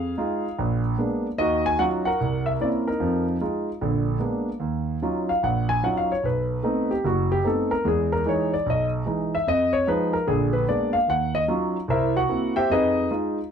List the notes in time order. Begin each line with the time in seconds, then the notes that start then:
Already playing: F2 G#4 F5
0.18 G#3 D#4 F4
0.58 A#1
0.98 G#3 A#3 B3 D4
1.38 D#2 D#3 F#4 D#5
1.66 G#5
1.79 F#3 C#4 D#4 F4 F#5
2.05 A#4 F#5
2.21 C2
2.46 E5
2.60 A#3 C4 C#4 E4 D5
2.88 D#4 A#4
3.00 F2 F3
3.41 G#3 D#4 F4
3.81 A#1 D3
4.20 G#3 A#3 B3 D4
4.60 D#2
5.02 F#3 C#4 D#4 F4
5.29 F5
5.43 A#1 F#5
5.69 G#5
5.83 F#3 C#4 D#4 F4 F#5
5.97 F5
6.12 C#5
6.24 B1 B4
6.63 A3 B3 C4 D#4
6.91 G4
7.04 F#1 F#4
7.32 G4
7.44 A3 B3 C4 D#4 A4
7.71 A#4
7.85 E2 G#3 G#4
8.12 A#4
8.26 E3 G#3 D#4 C#5
8.53 D5
8.66 B1 D#5
9.06 E3 G#3 D#4
9.35 E5
9.47 F2 D#5
9.73 C#5
9.87 F3 G#3 D#4 B4
10.13 A#4
10.27 A#1 D3 G#4
10.53 B4
10.68 G#3 A#3 B3 D4 D5
10.93 F5
11.08 D#2 F#5
11.35 D#5
11.48 F#3 C#4 D#4 F4
11.88 C2 E4 A#4 C5 E5
12.16 F#4 F#5
12.29 A#3 C4 E4
12.56 G4 C5 E5 G5
12.70 F2 D#4 G#4 B4 D#5
13.11 G#3 D#4 F4